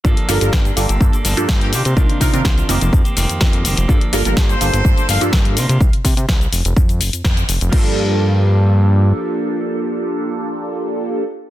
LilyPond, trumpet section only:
\new Staff \with { instrumentName = "Trumpet section" } { \time 4/4 \key g \minor \tempo 4 = 125 r8 bes'16 bes'16 r2 r16 g'16 g'16 r16 | r8 bes'16 bes'16 r2. | r8 bes'16 bes'16 r16 c''4~ c''16 f''16 r4 r16 | r1 |
r1 | r1 | }